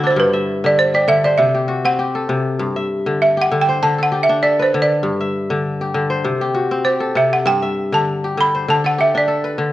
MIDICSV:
0, 0, Header, 1, 3, 480
1, 0, Start_track
1, 0, Key_signature, 1, "major"
1, 0, Tempo, 607287
1, 138, Time_signature, 4, 2, 24, 8
1, 7688, End_track
2, 0, Start_track
2, 0, Title_t, "Balafon"
2, 0, Program_c, 0, 12
2, 54, Note_on_c, 0, 72, 77
2, 155, Note_off_c, 0, 72, 0
2, 155, Note_on_c, 0, 71, 89
2, 522, Note_on_c, 0, 74, 94
2, 527, Note_off_c, 0, 71, 0
2, 619, Note_off_c, 0, 74, 0
2, 622, Note_on_c, 0, 72, 92
2, 679, Note_off_c, 0, 72, 0
2, 749, Note_on_c, 0, 74, 88
2, 852, Note_off_c, 0, 74, 0
2, 857, Note_on_c, 0, 76, 94
2, 978, Note_off_c, 0, 76, 0
2, 984, Note_on_c, 0, 74, 88
2, 1089, Note_on_c, 0, 76, 92
2, 1101, Note_off_c, 0, 74, 0
2, 1465, Note_on_c, 0, 78, 91
2, 1475, Note_off_c, 0, 76, 0
2, 2156, Note_off_c, 0, 78, 0
2, 2543, Note_on_c, 0, 76, 88
2, 2614, Note_off_c, 0, 76, 0
2, 2699, Note_on_c, 0, 78, 85
2, 2849, Note_off_c, 0, 78, 0
2, 2857, Note_on_c, 0, 79, 96
2, 3008, Note_off_c, 0, 79, 0
2, 3025, Note_on_c, 0, 81, 99
2, 3096, Note_off_c, 0, 81, 0
2, 3183, Note_on_c, 0, 78, 89
2, 3344, Note_on_c, 0, 76, 84
2, 3347, Note_off_c, 0, 78, 0
2, 3498, Note_on_c, 0, 74, 87
2, 3507, Note_off_c, 0, 76, 0
2, 3654, Note_on_c, 0, 72, 81
2, 3664, Note_off_c, 0, 74, 0
2, 3806, Note_off_c, 0, 72, 0
2, 3810, Note_on_c, 0, 74, 83
2, 4983, Note_off_c, 0, 74, 0
2, 5412, Note_on_c, 0, 72, 72
2, 5663, Note_off_c, 0, 72, 0
2, 5666, Note_on_c, 0, 76, 77
2, 5792, Note_on_c, 0, 78, 81
2, 5795, Note_off_c, 0, 76, 0
2, 5902, Note_on_c, 0, 79, 93
2, 5905, Note_off_c, 0, 78, 0
2, 6277, Note_on_c, 0, 81, 97
2, 6281, Note_off_c, 0, 79, 0
2, 6635, Note_off_c, 0, 81, 0
2, 6644, Note_on_c, 0, 83, 100
2, 6877, Note_on_c, 0, 81, 87
2, 6879, Note_off_c, 0, 83, 0
2, 6989, Note_off_c, 0, 81, 0
2, 7004, Note_on_c, 0, 78, 79
2, 7111, Note_off_c, 0, 78, 0
2, 7118, Note_on_c, 0, 76, 80
2, 7229, Note_off_c, 0, 76, 0
2, 7251, Note_on_c, 0, 74, 75
2, 7688, Note_off_c, 0, 74, 0
2, 7688, End_track
3, 0, Start_track
3, 0, Title_t, "Kora"
3, 0, Program_c, 1, 46
3, 0, Note_on_c, 1, 50, 73
3, 0, Note_on_c, 1, 66, 68
3, 0, Note_on_c, 1, 69, 70
3, 0, Note_on_c, 1, 71, 69
3, 28, Note_on_c, 1, 62, 66
3, 82, Note_on_c, 1, 64, 65
3, 129, Note_on_c, 1, 43, 86
3, 176, Note_off_c, 1, 66, 0
3, 178, Note_off_c, 1, 50, 0
3, 262, Note_on_c, 1, 76, 65
3, 388, Note_off_c, 1, 71, 0
3, 504, Note_on_c, 1, 50, 75
3, 519, Note_off_c, 1, 69, 0
3, 742, Note_on_c, 1, 67, 63
3, 842, Note_off_c, 1, 50, 0
3, 851, Note_on_c, 1, 50, 81
3, 988, Note_on_c, 1, 72, 68
3, 1080, Note_off_c, 1, 76, 0
3, 1095, Note_on_c, 1, 48, 79
3, 1140, Note_off_c, 1, 43, 0
3, 1140, Note_off_c, 1, 50, 0
3, 1218, Note_off_c, 1, 67, 0
3, 1221, Note_on_c, 1, 67, 64
3, 1320, Note_off_c, 1, 64, 0
3, 1327, Note_on_c, 1, 66, 67
3, 1355, Note_off_c, 1, 62, 0
3, 1458, Note_on_c, 1, 60, 70
3, 1567, Note_off_c, 1, 67, 0
3, 1570, Note_on_c, 1, 67, 63
3, 1697, Note_on_c, 1, 69, 64
3, 1799, Note_off_c, 1, 48, 0
3, 1808, Note_on_c, 1, 48, 79
3, 1927, Note_off_c, 1, 72, 0
3, 2049, Note_on_c, 1, 43, 81
3, 2096, Note_off_c, 1, 66, 0
3, 2100, Note_off_c, 1, 48, 0
3, 2181, Note_on_c, 1, 76, 64
3, 2420, Note_on_c, 1, 50, 66
3, 2660, Note_off_c, 1, 67, 0
3, 2663, Note_on_c, 1, 67, 60
3, 2738, Note_off_c, 1, 69, 0
3, 2769, Note_off_c, 1, 50, 0
3, 2778, Note_on_c, 1, 50, 82
3, 2881, Note_off_c, 1, 60, 0
3, 2914, Note_on_c, 1, 72, 66
3, 2998, Note_off_c, 1, 76, 0
3, 3016, Note_off_c, 1, 50, 0
3, 3026, Note_on_c, 1, 50, 78
3, 3061, Note_off_c, 1, 43, 0
3, 3148, Note_on_c, 1, 69, 62
3, 3250, Note_off_c, 1, 67, 0
3, 3254, Note_on_c, 1, 67, 66
3, 3392, Note_on_c, 1, 62, 76
3, 3497, Note_off_c, 1, 69, 0
3, 3500, Note_on_c, 1, 69, 65
3, 3630, Note_on_c, 1, 71, 68
3, 3677, Note_off_c, 1, 72, 0
3, 3738, Note_off_c, 1, 50, 0
3, 3747, Note_on_c, 1, 50, 78
3, 3977, Note_on_c, 1, 43, 83
3, 4020, Note_off_c, 1, 50, 0
3, 4116, Note_on_c, 1, 76, 63
3, 4351, Note_on_c, 1, 50, 75
3, 4370, Note_off_c, 1, 67, 0
3, 4541, Note_off_c, 1, 69, 0
3, 4594, Note_on_c, 1, 67, 60
3, 4601, Note_off_c, 1, 71, 0
3, 4690, Note_off_c, 1, 50, 0
3, 4699, Note_on_c, 1, 50, 81
3, 4719, Note_off_c, 1, 62, 0
3, 4821, Note_on_c, 1, 72, 69
3, 4933, Note_off_c, 1, 76, 0
3, 4936, Note_on_c, 1, 48, 78
3, 4980, Note_off_c, 1, 43, 0
3, 4980, Note_off_c, 1, 50, 0
3, 5065, Note_off_c, 1, 67, 0
3, 5068, Note_on_c, 1, 67, 66
3, 5172, Note_on_c, 1, 66, 66
3, 5304, Note_on_c, 1, 60, 70
3, 5407, Note_off_c, 1, 67, 0
3, 5410, Note_on_c, 1, 67, 64
3, 5534, Note_on_c, 1, 69, 64
3, 5644, Note_off_c, 1, 48, 0
3, 5653, Note_on_c, 1, 48, 79
3, 5760, Note_off_c, 1, 72, 0
3, 5892, Note_on_c, 1, 43, 89
3, 5939, Note_off_c, 1, 66, 0
3, 5940, Note_off_c, 1, 48, 0
3, 6024, Note_on_c, 1, 76, 67
3, 6263, Note_on_c, 1, 50, 74
3, 6511, Note_off_c, 1, 67, 0
3, 6514, Note_on_c, 1, 67, 63
3, 6576, Note_off_c, 1, 69, 0
3, 6609, Note_off_c, 1, 50, 0
3, 6619, Note_on_c, 1, 50, 81
3, 6727, Note_off_c, 1, 60, 0
3, 6755, Note_on_c, 1, 72, 63
3, 6841, Note_off_c, 1, 76, 0
3, 6854, Note_off_c, 1, 50, 0
3, 6863, Note_on_c, 1, 50, 79
3, 6900, Note_off_c, 1, 43, 0
3, 6988, Note_on_c, 1, 69, 63
3, 7096, Note_off_c, 1, 67, 0
3, 7099, Note_on_c, 1, 67, 64
3, 7228, Note_on_c, 1, 62, 74
3, 7329, Note_off_c, 1, 69, 0
3, 7332, Note_on_c, 1, 69, 65
3, 7460, Note_on_c, 1, 71, 66
3, 7508, Note_off_c, 1, 72, 0
3, 7563, Note_off_c, 1, 50, 0
3, 7572, Note_on_c, 1, 50, 81
3, 7688, Note_off_c, 1, 50, 0
3, 7688, Note_off_c, 1, 62, 0
3, 7688, Note_off_c, 1, 67, 0
3, 7688, Note_off_c, 1, 69, 0
3, 7688, Note_off_c, 1, 71, 0
3, 7688, End_track
0, 0, End_of_file